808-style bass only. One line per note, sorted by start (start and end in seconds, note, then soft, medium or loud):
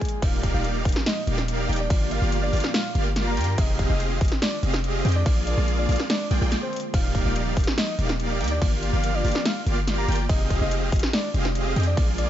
0.22 0.52 D#1 loud
0.54 0.83 D#1 loud
0.85 0.93 D#1 loud
1.27 1.67 D#1 loud
1.69 1.88 D#1 loud
1.90 2.20 G1 loud
2.22 2.51 G1 loud
2.53 2.61 G1 loud
2.95 3.39 G1 loud
3.37 3.56 G2 loud
3.58 3.88 F1 loud
3.90 4.19 F1 loud
4.21 4.29 F1 loud
4.63 5.03 F1 loud
5.05 5.24 F2 loud
5.26 5.55 A#1 loud
5.58 5.87 A#1 medium
5.89 5.97 A#1 medium
6.31 6.39 A#1 medium
6.42 6.55 A#1 medium
6.94 7.23 D#1 loud
7.25 7.55 D#1 loud
7.57 7.65 D#1 medium
7.99 8.42 D#1 loud
8.41 8.60 D#2 loud
8.62 8.91 G1 loud
8.93 9.23 G1 loud
9.25 9.32 G1 loud
9.67 10.06 G1 medium
10.08 10.27 G1 loud
10.29 10.59 F1 loud
10.61 10.90 F1 loud
10.92 11.00 F1 loud
11.34 11.74 F1 loud
11.76 11.95 F2 medium
11.97 12.27 A#1 loud